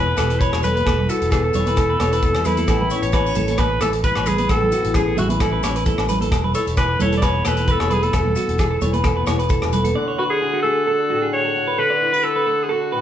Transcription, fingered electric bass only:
0.00 0.14 E1 medium
0.18 0.50 E1 medium
0.53 0.84 E1 medium
0.87 1.07 E1 medium
1.21 1.52 E1 medium
1.55 1.96 E1 medium
2.01 2.32 E1 medium
2.35 2.66 E2 medium
2.68 2.89 A1 loud
3.02 3.33 A1 medium
3.36 3.78 A1 medium
3.81 4.13 A1 medium
4.17 4.47 A1 medium
4.50 4.71 A1 medium
4.85 5.16 A1 medium
5.18 5.60 A1 medium
5.64 5.96 A1 medium
5.98 6.29 A1 medium
6.32 6.53 E1 medium
6.67 6.97 E1 medium
7.01 7.42 E1 medium
7.46 7.78 E1 medium
7.80 8.11 E1 medium
8.14 8.35 E1 loud
8.48 8.79 E1 medium
8.82 9.24 E1 medium
9.27 9.59 E1 medium
9.62 9.93 E1 medium

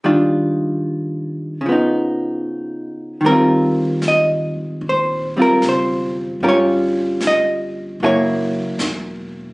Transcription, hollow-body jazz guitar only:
0.04 1.61 D#3 soft
0.04 1.63 G3 soft
0.04 1.64 D4 soft
0.04 1.64 F4 soft
1.61 3.20 C#3 soft
1.66 3.23 F3 soft
1.66 3.25 B3 soft
1.72 3.27 D#4 soft
3.21 6.41 D#3 soft
3.25 5.35 G3 soft
3.25 5.37 C4 soft
3.25 4.07 A#4 medium
3.32 5.38 F4 soft
4.08 4.81 D#5 medium
4.89 5.35 C5 medium
5.37 6.42 G3 soft
5.37 6.43 C4 soft
5.37 6.42 F4 soft
5.42 5.64 A#4 medium
5.69 6.41 C5 medium
6.43 8.01 G3 soft
6.43 8.01 C#4 soft
6.43 8.02 F4 soft
6.43 6.48 A#4 soft
6.49 7.27 C#5 medium
7.27 7.99 D#5 medium
8.03 9.53 F#3 soft
8.03 9.53 A#3 soft
8.03 9.53 E4 soft
8.03 9.30 C#5 medium

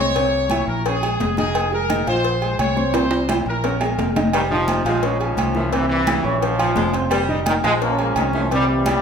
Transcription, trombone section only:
4.33 4.50 G#2 medium
4.33 4.50 C3 medium
4.33 4.41 D#3 loud
4.51 4.99 G#2 medium
4.51 4.99 C3 medium
4.51 4.83 F3 loud
4.85 5.51 C#3 medium
4.85 5.19 F3 medium
4.85 5.18 G#3 loud
5.21 5.69 G#2 medium
5.21 5.73 F3 loud
5.21 5.69 C#4 medium
5.73 5.89 G2 medium
5.73 5.89 A#2 medium
5.73 5.88 E3 loud
5.89 6.39 G2 medium
5.89 6.39 A#2 medium
5.89 6.38 E3 loud
6.42 7.08 G#2 medium
6.42 7.08 C#3 medium
6.42 6.94 F3 medium
7.47 7.55 D#3 medium
7.64 7.72 G#3 loud
7.82 8.33 F3 medium
7.82 7.98 A#3 loud
7.82 8.47 C#4 medium
7.99 8.15 A#3 loud
8.17 8.25 D#3 medium
8.34 8.50 F3 medium
8.52 8.68 A#2 medium
8.52 8.68 E3 medium
8.52 8.67 G3 loud
8.69 9.02 A#2 medium
8.69 9.02 E3 medium
8.69 9.02 G3 loud

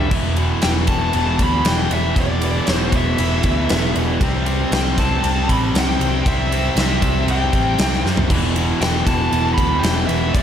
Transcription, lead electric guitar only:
0.00 0.11 E5 loud
0.63 0.70 G5 medium
0.88 1.36 A5 medium
1.43 1.68 B5 loud
1.66 1.92 G5 medium
1.93 2.16 E5 medium
2.20 2.72 D5 medium
2.72 2.91 C5 medium
2.96 3.93 E5 medium
4.73 4.99 G5 medium
4.99 5.46 A5 medium
5.50 5.57 B5 loud
5.78 6.27 G5 medium
6.27 6.79 E5 medium
6.80 7.30 E5 medium
7.31 8.02 G5 medium
8.81 9.08 G5 medium
9.07 9.54 A5 loud
9.54 9.82 B5 loud
9.79 10.06 G5 loud
10.07 10.31 E5 loud
10.34 10.43 D5 medium

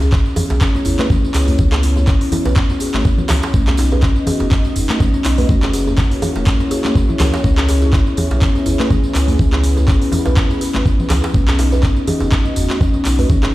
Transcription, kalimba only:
0.61 0.69 C#4 medium
0.75 0.85 C#4 medium
0.86 0.99 E4 medium
0.99 1.05 B4 medium
1.10 1.23 C#4 loud
1.34 1.47 G#4 medium
2.08 2.15 C#4 medium
2.21 2.31 C#4 medium
2.32 2.45 E4 medium
2.46 2.51 B4 medium
2.56 2.69 C#4 loud
2.81 2.93 G#4 medium
3.54 3.61 C#4 medium
3.68 3.77 C#4 medium
3.79 3.91 D#4 medium
3.92 3.98 B4 medium
4.03 4.16 C#4 loud
4.27 4.39 G#4 medium
5.00 5.08 C#4 medium
5.14 5.24 C#4 medium
5.25 5.38 D#4 medium
5.38 5.44 B4 medium
5.49 5.62 C#4 loud
5.74 5.86 G#4 medium
6.47 6.54 C#4 medium
6.60 6.70 C#4 medium
6.71 6.83 G#4 loud
6.85 6.94 C#4 loud
6.96 7.08 F#4 medium
7.09 7.19 E4 medium
7.20 7.32 A#4 medium
7.44 7.57 C#4 loud
7.69 7.81 G#4 medium
8.42 8.49 C#4 medium
8.55 8.65 C#4 medium
8.66 8.79 E4 medium
8.80 8.86 B4 medium
8.91 9.03 C#4 loud
9.15 9.27 G#4 medium
9.88 9.95 C#4 medium
10.02 10.11 C#4 medium
10.12 10.25 E4 medium
10.26 10.32 B4 medium
10.37 10.50 C#4 loud
10.61 10.73 G#4 medium
11.34 11.42 C#4 medium
11.48 11.58 C#4 medium
11.59 11.72 D#4 medium
11.72 11.78 B4 medium
11.83 11.96 C#4 loud
12.08 12.20 G#4 medium
12.81 12.88 C#4 medium
12.94 13.04 C#4 medium
13.05 13.18 D#4 medium
13.19 13.25 B4 medium
13.30 13.43 C#4 loud

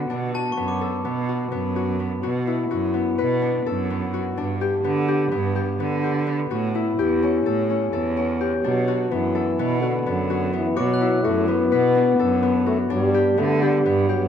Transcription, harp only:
0.00 0.57 B3 medium
0.00 0.34 F#4 medium
0.10 2.90 D4 medium
0.34 1.28 F#4 medium
0.57 1.04 B3 medium
0.81 3.01 A4 medium
1.05 1.51 B3 medium
1.29 1.75 F#4 medium
1.52 1.99 B3 medium
1.76 2.23 F#4 medium
2.00 2.93 B3 medium
2.23 2.70 F#4 medium
2.47 5.08 E4 medium
2.71 4.13 F#4 medium
2.94 3.90 B3 medium
3.18 5.23 B4 medium
3.42 4.37 D4 medium
3.66 5.86 A4 medium
3.90 4.84 B3 medium
4.14 4.67 F#4 medium
4.37 7.17 D4 medium
4.61 5.08 G4 medium
4.84 5.31 B3 medium
5.08 5.55 G4 medium
5.32 5.79 B3 medium
5.56 6.03 G4 medium
5.80 6.26 B3 medium
6.03 6.57 G4 medium
6.27 9.11 B3 medium
6.51 7.05 F#4 medium
6.75 9.36 E4 medium
6.99 8.40 G4 medium
7.23 7.69 C#4 medium
7.46 7.92 A4 medium
7.70 8.16 C#4 medium
7.93 9.35 A4 medium
8.17 8.70 C#4 medium
8.41 8.94 G4 medium
8.64 11.44 D4 medium
8.88 9.82 F#4 medium
9.11 9.59 B3 medium
9.35 11.55 A4 medium
9.59 10.06 B3 medium
9.82 10.29 F#4 medium
10.06 10.53 B3 medium
10.30 10.76 F#4 medium
10.53 11.47 B3 medium
10.76 11.24 F#4 medium
11.01 13.62 E4 medium
11.24 12.66 F#4 medium
11.48 12.42 B3 medium
11.72 13.77 B4 medium
11.95 12.90 D4 medium
12.19 14.28 A4 medium
12.43 13.37 B3 medium
12.66 13.20 F#4 medium
12.90 14.28 D4 medium
13.14 13.61 G4 medium
13.38 13.85 B3 medium
13.62 14.09 G4 medium
13.86 14.28 B3 medium
14.09 14.28 G4 medium

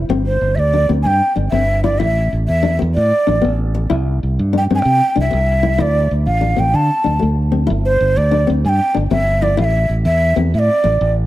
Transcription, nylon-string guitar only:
0.10 0.31 C4 medium
0.74 0.84 D4 medium
0.89 1.11 C4 medium
1.36 1.47 D4 medium
1.52 1.74 C4 medium
1.84 1.95 E4 medium
2.00 2.21 E4 medium
2.63 2.74 D4 medium
2.79 muted nylon-string guitar stroke medium
3.27 3.37 D4 medium
3.42 3.63 B3 medium
3.75 muted nylon-string guitar stroke medium
3.90 4.11 E4 medium
4.53 4.64 D4 medium
4.71 4.91 C4 medium
5.16 5.27 D4 medium
5.31 5.53 C4 medium
5.63 5.74 E4 medium
5.78 6.00 E4 medium
6.41 6.52 D4 medium
6.56 6.78 C4 medium
7.04 7.15 D4 medium
7.19 7.41 A3 medium
7.52 7.63 C4 medium
7.67 7.89 E4 medium
8.31 8.42 D4 medium
8.47 8.69 C4 medium
8.94 9.05 D4 medium
9.11 9.32 C4 medium
9.42 9.53 E4 medium
9.57 9.79 E4 medium
10.36 10.58 C4 medium
10.84 muted nylon-string guitar stroke medium

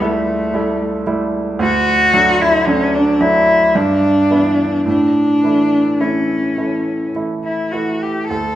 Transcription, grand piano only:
0.00 1.62 C#2 medium
0.00 0.54 G3 soft
0.00 0.02 A3 soft
0.00 0.49 A3 soft
0.00 0.02 E4 soft
0.00 0.50 E4 soft
0.54 1.02 G3 soft
0.54 1.02 A3 soft
0.54 1.02 E4 medium
1.07 1.56 G3 soft
1.07 1.56 A3 soft
1.07 1.56 E4 medium
1.59 2.11 D2 medium
2.13 2.63 F#3 soft
2.13 2.63 A3 soft
2.13 2.63 D4 soft
2.67 3.17 F#3 soft
2.67 3.17 A3 soft
2.67 3.17 D4 soft
3.21 3.71 F#3 soft
3.21 3.71 A3 soft
3.21 3.71 D4 soft
3.75 4.29 G2 medium
4.30 4.83 E3 soft
4.30 4.83 B3 soft
4.30 4.83 E4 soft
4.86 5.41 A2 medium
5.43 5.97 E3 soft
5.43 5.97 A3 soft
5.43 5.97 E4 soft
6.00 6.53 E3 soft
6.00 6.54 A3 soft
6.00 6.54 E4 soft
6.58 7.11 E3 soft
6.58 7.11 A3 soft
6.58 7.11 E4 soft
7.16 7.69 E3 soft
7.16 7.69 A3 soft
7.16 7.69 E4 soft
7.73 8.27 E3 soft
7.73 8.27 A3 soft
7.73 8.27 E4 soft
8.30 8.55 D2 soft

